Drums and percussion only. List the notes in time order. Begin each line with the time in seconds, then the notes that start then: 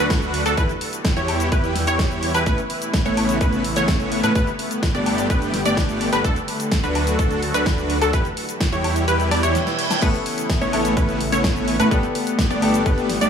0.10 kick, snare, closed hi-hat, shaker
0.22 closed hi-hat, shaker
0.34 open hi-hat
0.46 closed hi-hat, high woodblock, shaker
0.57 kick, closed hi-hat, shaker
0.69 closed hi-hat, shaker
0.81 open hi-hat
0.93 closed hi-hat, shaker
1.05 kick, snare, closed hi-hat, shaker
1.17 closed hi-hat, shaker
1.28 open hi-hat, high woodblock
1.40 closed hi-hat, shaker
1.52 kick, closed hi-hat, shaker
1.64 closed hi-hat, shaker
1.75 snare, open hi-hat
1.87 closed hi-hat, shaker
1.99 kick, snare, closed hi-hat, shaker
2.11 closed hi-hat, shaker
2.23 open hi-hat
2.34 closed hi-hat, high woodblock, shaker
2.46 kick, closed hi-hat, shaker
2.58 closed hi-hat, shaker
2.70 open hi-hat
2.82 closed hi-hat, shaker
2.94 kick, snare, closed hi-hat, shaker
3.05 closed hi-hat, shaker
3.17 open hi-hat, high woodblock
3.29 closed hi-hat, shaker
3.41 kick, closed hi-hat, shaker
3.53 closed hi-hat, shaker
3.64 open hi-hat
3.76 closed hi-hat, shaker
3.88 kick, snare, closed hi-hat, shaker
4.00 closed hi-hat, shaker
4.12 open hi-hat
4.24 closed hi-hat, high woodblock, shaker
4.35 kick, closed hi-hat, shaker
4.47 closed hi-hat, shaker
4.59 open hi-hat
4.71 closed hi-hat, shaker
4.83 kick, snare, closed hi-hat, shaker
4.95 closed hi-hat, shaker
5.06 open hi-hat, high woodblock
5.18 closed hi-hat, shaker
5.30 kick, closed hi-hat, shaker
5.42 closed hi-hat, shaker
5.54 snare, open hi-hat
5.65 closed hi-hat, shaker
5.77 kick, snare, closed hi-hat, shaker
5.89 closed hi-hat, shaker
6.01 open hi-hat
6.13 closed hi-hat, high woodblock, shaker
6.24 kick, closed hi-hat, shaker
6.36 closed hi-hat, shaker
6.48 open hi-hat
6.60 closed hi-hat, shaker
6.71 kick, snare, closed hi-hat, shaker
6.83 closed hi-hat, shaker
6.95 open hi-hat, high woodblock
7.07 closed hi-hat, shaker
7.19 kick, closed hi-hat, shaker
7.31 closed hi-hat, shaker
7.42 open hi-hat
7.54 closed hi-hat, shaker
7.66 kick, snare, closed hi-hat, shaker
7.78 closed hi-hat, shaker
7.90 open hi-hat
8.02 closed hi-hat, high woodblock, shaker
8.13 kick, closed hi-hat, shaker
8.25 closed hi-hat, shaker
8.37 open hi-hat
8.49 closed hi-hat, shaker
8.61 kick, snare, closed hi-hat, shaker
8.72 closed hi-hat, shaker
8.84 open hi-hat, high woodblock
8.96 closed hi-hat, shaker
9.08 closed hi-hat, shaker
9.20 closed hi-hat, shaker
9.31 snare, open hi-hat, high woodblock
9.43 closed hi-hat, shaker
9.55 snare, closed hi-hat, shaker
9.67 snare, closed hi-hat, shaker
9.79 open hi-hat
9.91 snare, closed hi-hat, high woodblock, shaker
10.02 kick, closed hi-hat, crash, shaker
10.14 closed hi-hat, shaker
10.26 open hi-hat
10.38 closed hi-hat, shaker
10.50 kick, snare, closed hi-hat, shaker
10.61 closed hi-hat, shaker
10.73 open hi-hat, high woodblock
10.85 closed hi-hat, shaker
10.97 kick, closed hi-hat, shaker
11.09 closed hi-hat, shaker
11.21 open hi-hat
11.32 closed hi-hat, shaker
11.44 kick, snare, closed hi-hat, shaker
11.56 closed hi-hat, shaker
11.68 open hi-hat
11.80 closed hi-hat, high woodblock, shaker
11.91 kick, closed hi-hat, shaker
12.03 closed hi-hat, shaker
12.15 open hi-hat
12.27 closed hi-hat, shaker
12.39 kick, snare, closed hi-hat, shaker
12.51 closed hi-hat, shaker
12.62 open hi-hat, high woodblock
12.74 closed hi-hat, shaker
12.86 kick, closed hi-hat, shaker
12.98 closed hi-hat, shaker
13.09 snare, open hi-hat
13.21 closed hi-hat, shaker